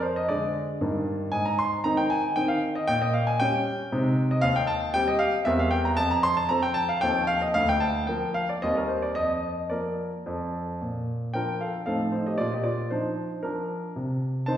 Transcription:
0.00 0.28 F2 medium
0.00 0.16 C5 medium
0.16 0.29 D#5 medium
0.29 0.67 D3 soft
0.29 0.67 G#3 medium
0.29 0.67 G#4 soft
0.29 1.07 D5 medium
0.81 1.31 G2 medium
0.81 1.29 D#3 medium
0.81 1.29 A#3 medium
0.81 1.30 D#4 medium
1.32 1.83 G#2 medium
1.32 1.45 G#5 loud
1.45 1.59 A#5 medium
1.59 1.82 C6 loud
1.84 2.23 D#3 medium
1.84 2.23 C4 medium
1.84 2.23 D#4 medium
1.84 1.98 A#5 loud
1.97 2.11 G5 medium
2.10 2.36 G#5 loud
2.36 2.74 D#3 medium
2.36 2.74 C4 medium
2.36 2.75 D#4 medium
2.36 2.49 G5 loud
2.48 2.75 F5 medium
2.75 2.89 D#5 medium
2.88 3.38 A#2 medium
2.88 3.01 G5 loud
3.02 3.14 D#5 medium
3.14 3.27 F5 medium
3.27 3.40 G#5 medium
3.40 3.78 G3 medium
3.40 3.78 C#4 medium
3.40 4.30 G5 loud
3.92 4.42 C3 medium
3.92 4.40 G#3 medium
3.92 4.40 C4 medium
3.92 4.40 D#4 medium
4.31 4.44 D#5 medium
4.41 4.93 D#2 medium
4.41 4.55 F5 loud
4.56 4.69 G5 loud
4.67 4.91 A5 loud
4.94 5.32 G3 medium
4.94 5.32 C4 medium
4.94 5.32 G4 medium
4.94 5.07 G5 loud
5.08 5.20 D#5 medium
5.19 5.43 F5 loud
5.45 5.96 E2 medium
5.45 5.94 G3 medium
5.45 5.94 C4 medium
5.45 5.95 A#4 medium
5.45 5.59 E5 loud
5.59 5.72 F5 medium
5.71 5.84 G5 loud
5.85 5.98 A#5 medium
5.97 6.48 F2 medium
5.97 6.10 A5 loud
6.11 6.24 A#5 loud
6.23 6.37 C6 loud
6.37 6.50 A5 loud
6.49 6.88 F3 medium
6.49 6.88 C4 medium
6.49 6.88 A4 medium
6.49 6.63 A#5 loud
6.63 6.76 G5 loud
6.74 6.88 A5 loud
6.89 7.02 F5 medium
7.01 7.53 D#2 medium
7.01 7.51 F3 medium
7.01 7.51 C4 medium
7.01 7.52 A4 medium
7.01 7.25 G5 loud
7.27 7.41 F5 loud
7.42 7.55 D#5 medium
7.54 8.06 D2 medium
7.54 7.68 F5 loud
7.69 7.82 G5 loud
7.80 8.07 A5 medium
8.07 8.47 F3 medium
8.07 8.47 A#3 medium
8.07 8.47 A#4 medium
8.07 8.32 G5 medium
8.34 8.48 F5 medium
8.49 8.62 D5 medium
8.62 9.15 D#2 medium
8.62 9.13 G3 soft
8.62 9.13 C4 medium
8.62 8.75 A#4 soft
8.62 8.75 D#5 medium
8.77 8.89 A#4 medium
8.88 9.02 C5 medium
9.02 9.16 D5 medium
9.15 9.69 F2 medium
9.15 9.48 D#5 loud
9.70 10.11 F3 soft
9.70 10.11 A#3 soft
9.70 10.11 A#4 medium
9.70 10.53 D5 medium
10.26 10.80 F2 medium
10.26 10.77 F3 soft
10.26 10.78 C4 soft
10.26 10.78 A4 soft
10.82 11.33 A#2 medium
11.34 11.73 F3 soft
11.34 11.73 D4 soft
11.34 11.73 F4 soft
11.34 11.59 A#4 medium
11.34 11.60 G5 medium
11.61 11.85 A4 medium
11.61 11.84 F5 medium
11.86 12.38 A2 medium
11.86 12.35 F3 soft
11.86 12.36 C4 soft
11.86 12.12 D#4 soft
11.86 12.11 A4 medium
11.86 12.10 F5 medium
12.12 12.25 D#4 medium
12.12 12.25 C5 medium
12.26 12.39 G4 soft
12.26 12.39 D#5 medium
12.38 12.90 A#2 medium
12.38 12.52 F4 medium
12.38 12.52 D5 medium
12.53 12.65 G4 medium
12.53 12.66 D#5 medium
12.64 12.89 F4 medium
12.64 12.88 D5 medium
12.90 13.29 F3 soft
12.90 13.29 D4 soft
12.90 13.40 D#4 soft
12.90 13.22 C5 medium
13.43 13.82 F3 soft
13.43 13.93 D4 medium
13.43 13.92 A#4 medium
13.96 14.47 C3 medium
14.46 14.57 D#3 medium
14.46 14.57 C4 soft
14.46 14.57 D#4 medium
14.46 14.57 C5 medium
14.46 14.57 A5 medium

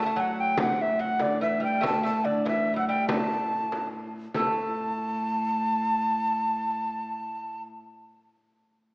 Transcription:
0.00 4.34 A2 medium
0.00 0.05 A3 medium
0.00 0.22 A5 medium
0.06 0.16 A3 medium
0.16 0.57 F#3 medium
0.16 0.42 F#5 medium
0.40 0.59 G5 medium
0.57 0.98 F#3 medium
0.57 0.83 F#5 medium
0.57 frame drum medium
0.78 1.02 E5 medium
0.78 frame drum soft
0.99 1.21 F#3 medium
0.99 1.23 F#5 medium
1.19 1.40 D3 medium
1.19 1.41 D5 medium
1.19 frame drum medium
1.41 1.63 E3 medium
1.41 1.61 E5 medium
1.60 1.81 G3 medium
1.64 1.83 G5 medium
1.81 2.02 A3 medium
1.81 frame drum medium
1.86 2.04 A5 medium
2.03 2.25 A3 medium
2.03 2.26 A5 medium
2.03 frame drum soft
2.25 2.45 D3 medium
2.25 2.46 D5 medium
2.45 2.76 E3 medium
2.45 2.76 E5 medium
2.45 frame drum medium
2.74 2.88 F#3 medium
2.74 2.77 G3 medium
2.78 2.88 F#5 medium
2.88 3.10 G3 medium
2.88 3.08 G5 medium
3.08 3.89 A3 medium
3.08 3.88 A5 medium
3.08 frame drum medium
3.51 frame drum soft
3.72 frame drum medium
3.93 frame drum soft
4.34 7.66 A2 medium
4.34 8.32 A3 medium
4.34 7.62 A5 medium
4.34 frame drum medium

